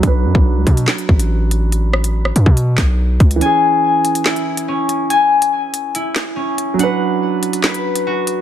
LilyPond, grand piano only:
\new Staff \with { instrumentName = "Grand piano" } { \time 4/4 \key b \dorian \tempo 4 = 142 <fis d' b'>1~ | <fis d' b'>1 | <e cis' gis'>1~ | <e cis' gis'>1 |
<fis d' b'>1 | }